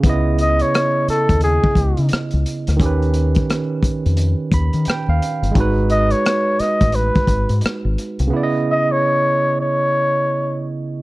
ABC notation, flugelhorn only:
X:1
M:4/4
L:1/16
Q:"Swing 16ths" 1/4=87
K:C#m
V:1 name="Flugelhorn"
z2 d c3 A2 G4 z4 | z16 | z2 d c3 d2 B4 z4 | z2 d c4 c6- c z2 |]